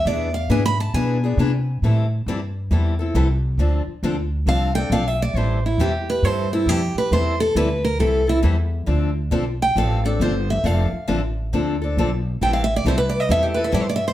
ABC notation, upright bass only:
X:1
M:4/4
L:1/8
Q:"Swing" 1/4=136
K:Am
V:1 name="Upright bass" clef=bass
E,,2 ^G,,2 B,,2 C,2 | A,,2 G,,2 E,,2 C,,2 | D,, z D,,2 C,,2 B,,,2 | A,,,2 E,,2 G,,2 F,, z |
E,,2 D,,2 C,,2 E,,2 | D,,2 B,,,2 A,,,2 G,,,2 | F,,, z A,,,2 D,,2 B,,,2 | A,,,2 C,,2 E,,2 G,,2 |]